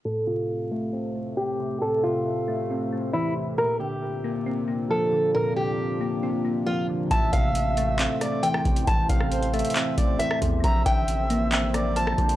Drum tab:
HH |--------------------------------|--------------------------------|--------------------------------|--------------------------------|
CP |--------------------------------|--------------------------------|--------------------------------|--------------------------------|
SD |--------------------------------|--------------------------------|--------------------------------|--------------------------------|
BD |--------------------------------|--------------------------------|--------------------------------|--------------------------------|

HH |x---x---x---x---x---x---x---x-x-|x---x---x-x-xxxxx---x---x---x---|x---x---x---x---x---x---x---x-x-|
CP |----------------x---------------|----------------x---------------|----------------x---------------|
SD |--------------------r-----r-----|------r-------------------r-----|--------------------r-----r-----|
BD |o---o-----------------------o---|o---o---------------o-------o---|o---o-----------------------o---|